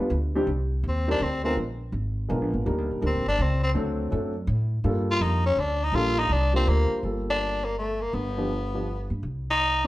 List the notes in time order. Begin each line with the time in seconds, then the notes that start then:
0.00 B3 D4 F4 B4
0.10 D2
0.35 G3 C4 D4 D#4 G4
0.47 C2
0.84 D#2
0.88 C4
1.08 G3 C4 D4 D#4 A#4
1.20 D2 C4
1.44 G#3 B3 C4 D4 F4 A#4
1.57 A#1
1.92 G#1
2.29 B1 G#3 B3 D4 F4 A#4
2.41 A#1
2.53 G#1
2.66 D#2 G3 A#3 D4 D#4 A#4
2.78 D2
2.91 A#1
3.01 D2 G3 A#3 D4 D#4 A#4
3.06 C4
3.14 A#1
3.26 G1 D4
3.39 C#2 C4
3.63 C4
3.74 D2 F#3 A3 C4 D4 A4
4.11 F#2 F#3 A3 C4 D4 A4
4.47 A2
4.84 G2 G3 A#3 D4 F4 A4
5.11 F4
5.20 F2 D#4
5.46 C#4
5.56 D2 D4
5.84 D#4
5.92 A#1 G3 A#3 D4 F4 A4
6.19 D#4
6.29 C2 D4
6.54 G3 A#3 C4 D4 F4 C5
6.67 D2 A#3
6.91 muted upright bass stroke
7.03 G1 G3 A#3 F4 A4
7.30 D4
7.65 A#3
7.78 A3
8.01 A#3
8.13 G1 B3
8.37 F3 B3 D4 G4
8.74 F3 B3 D4 G4
9.10 G2
9.23 C2
9.51 D#4